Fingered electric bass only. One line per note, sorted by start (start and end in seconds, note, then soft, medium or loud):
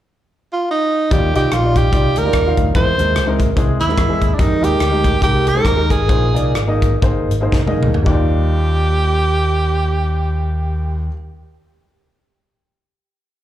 1.11 1.31 D#2 medium
1.34 1.49 C2 medium
1.52 1.87 A#1 medium
1.93 2.13 C2 medium
2.17 2.32 D2 medium
2.33 2.53 D#2 medium
2.58 2.72 D2 medium
2.75 2.95 E2 medium
2.98 3.13 D#2 medium
3.16 3.51 C#2 medium
3.57 3.77 C2 medium
3.80 3.95 D#2 medium
3.97 4.17 E2 medium
4.22 4.36 D#2 medium
4.39 4.59 F2 medium
4.61 4.77 D#2 medium
4.79 5.15 D2 medium
5.22 5.58 C2 medium
5.65 5.92 D#2 medium
5.90 6.09 G#1 medium
6.09 6.31 A#1 medium
6.35 6.52 C2 medium
6.54 6.95 G#1 medium
7.02 7.27 G1 medium
7.30 7.49 G#1 medium
7.52 7.83 F1 medium
7.83 8.03 D2 medium
8.06 11.08 D#2 medium